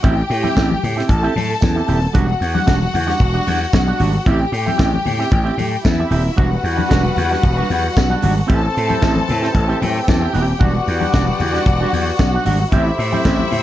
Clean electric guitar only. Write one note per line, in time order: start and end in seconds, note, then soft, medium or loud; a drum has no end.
0.03 0.21 C4 medium
0.03 0.17 E4 medium
0.03 0.16 G4 medium
0.17 muted clean electric guitar stroke soft
0.29 muted clean electric guitar stroke soft
0.42 0.54 C4 medium
0.42 0.55 E4 medium
0.42 0.56 G4 medium
0.55 0.73 C4 medium
0.55 0.70 E4 medium
0.55 0.70 G4 medium
0.71 muted clean electric guitar stroke medium
0.83 muted clean electric guitar stroke soft
0.96 1.09 C4 medium
0.96 1.09 E4 medium
0.96 1.09 G4 medium
1.23 1.34 C4 medium
1.23 1.34 E4 medium
1.23 1.34 G4 medium
1.35 muted clean electric guitar stroke soft
1.49 muted clean electric guitar stroke soft
1.61 muted clean electric guitar stroke soft
1.75 1.86 C4 medium
1.75 1.87 E4 medium
1.75 1.87 G4 soft
1.88 2.06 C4 medium
1.88 2.01 E4 medium
1.88 1.99 G4 medium
2.01 muted clean electric guitar stroke medium
2.13 2.32 G3 medium
2.13 2.27 D4 medium
2.13 2.27 F#4 medium
2.28 muted clean electric guitar stroke soft
2.40 muted clean electric guitar stroke soft
2.53 2.65 G3 medium
2.53 2.65 D4 soft
2.53 2.66 F#4 medium
2.66 2.84 G3 medium
2.66 2.79 D4 medium
2.66 2.79 F#4 loud
2.80 muted clean electric guitar stroke soft
2.93 muted clean electric guitar stroke soft
3.07 3.18 G3 medium
3.07 3.19 D4 medium
3.07 3.19 F#4 medium
3.19 muted clean electric guitar stroke soft
3.34 3.45 G3 medium
3.34 3.46 D4 medium
3.34 3.46 F#4 medium
3.46 3.61 G3 medium
3.46 3.60 D4 medium
3.46 3.60 F#4 medium
3.61 muted clean electric guitar stroke soft
3.73 muted clean electric guitar stroke soft
3.87 3.98 G3 medium
3.87 3.99 D4 medium
3.87 3.99 F#4 medium
3.99 4.17 G3 medium
3.99 4.12 D4 medium
3.99 4.12 F#4 loud
4.13 muted clean electric guitar stroke medium
4.26 4.44 C4 medium
4.26 4.41 E4 medium
4.26 4.40 G4 medium
4.42 muted clean electric guitar stroke soft
4.52 muted clean electric guitar stroke soft
4.66 4.76 C4 soft
4.66 4.77 E4 medium
4.66 4.77 G4 medium
4.77 4.96 C4 medium
4.77 4.92 E4 medium
4.77 4.91 G4 medium
4.92 muted clean electric guitar stroke medium
5.05 muted clean electric guitar stroke soft
5.19 5.29 C4 medium
5.19 5.30 E4 medium
5.19 5.30 G4 medium
5.44 5.56 C4 medium
5.44 5.56 E4 medium
5.44 5.57 G4 medium
5.57 muted clean electric guitar stroke soft
5.72 muted clean electric guitar stroke soft
5.84 muted clean electric guitar stroke soft
5.99 6.09 C4 soft
5.99 6.10 E4 medium
5.99 6.10 G4 medium
6.11 6.29 C4 medium
6.11 6.24 E4 medium
6.11 6.24 G4 medium
6.25 muted clean electric guitar stroke soft
6.36 6.55 G3 medium
6.36 6.51 D4 medium
6.36 6.50 F#4 loud
6.51 muted clean electric guitar stroke medium
6.64 muted clean electric guitar stroke soft
6.77 6.88 G3 medium
6.77 6.88 D4 medium
6.77 6.88 F#4 medium
6.89 7.07 G3 medium
6.89 7.03 D4 medium
6.89 7.03 F#4 medium
7.04 muted clean electric guitar stroke soft
7.17 muted clean electric guitar stroke soft
7.31 7.42 G3 medium
7.31 7.43 D4 medium
7.31 7.43 F#4 medium
7.57 7.69 G3 medium
7.57 7.69 D4 medium
7.57 7.69 F#4 medium
7.70 muted clean electric guitar stroke soft
7.84 muted clean electric guitar stroke soft
7.96 muted clean electric guitar stroke soft
8.09 8.21 G3 medium
8.09 8.21 D4 medium
8.09 8.22 F#4 medium
8.22 8.40 G3 medium
8.22 8.36 D4 medium
8.22 8.34 F#4 medium
8.35 muted clean electric guitar stroke soft
8.47 8.65 C4 medium
8.47 8.62 E4 loud
8.47 8.61 G4 medium
8.75 muted clean electric guitar stroke soft
8.88 9.00 C4 medium
8.88 9.00 E4 medium
8.88 9.01 G4 medium
9.01 9.19 C4 medium
9.01 9.14 E4 medium
9.01 9.13 G4 medium
9.15 muted clean electric guitar stroke medium
9.27 muted clean electric guitar stroke soft
9.42 9.53 C4 soft
9.42 9.53 E4 medium
9.42 9.54 G4 medium
9.54 muted clean electric guitar stroke soft
9.68 9.80 C4 medium
9.68 9.80 E4 medium
9.68 9.81 G4 medium
9.81 muted clean electric guitar stroke medium
9.96 muted clean electric guitar stroke soft
10.08 muted clean electric guitar stroke soft
10.21 10.32 C4 medium
10.21 10.33 E4 medium
10.21 10.33 G4 medium
10.33 10.54 C4 medium
10.33 10.46 E4 medium
10.33 10.45 G4 medium
10.47 muted clean electric guitar stroke medium
10.59 10.77 G3 medium
10.59 10.73 D4 medium
10.59 10.73 F#4 medium
10.74 muted clean electric guitar stroke soft
10.86 muted clean electric guitar stroke soft
11.00 11.12 G3 soft
11.00 11.12 D4 medium
11.00 11.13 F#4 medium
11.13 11.31 G3 medium
11.13 11.26 D4 medium
11.13 11.25 F#4 medium
11.27 muted clean electric guitar stroke medium
11.39 muted clean electric guitar stroke soft
11.53 11.64 G3 medium
11.53 11.65 D4 medium
11.53 11.65 F#4 medium
11.65 muted clean electric guitar stroke soft
11.81 11.92 G3 medium
11.81 11.92 D4 medium
11.81 11.93 F#4 medium
11.93 muted clean electric guitar stroke soft
12.07 muted clean electric guitar stroke soft
12.20 muted clean electric guitar stroke soft
12.34 12.44 G3 medium
12.34 12.45 D4 medium
12.34 12.45 F#4 medium
12.45 12.63 G3 medium
12.45 12.59 D4 medium
12.45 12.59 F#4 medium
12.60 muted clean electric guitar stroke soft
12.72 12.89 C4 medium
12.72 12.85 E4 medium
12.72 12.85 G4 loud
12.86 muted clean electric guitar stroke soft
12.99 muted clean electric guitar stroke soft
13.12 13.23 C4 soft
13.12 13.24 E4 medium
13.12 13.24 G4 medium
13.25 13.42 C4 medium
13.25 13.38 E4 medium
13.25 13.38 G4 medium
13.39 muted clean electric guitar stroke medium
13.52 muted clean electric guitar stroke soft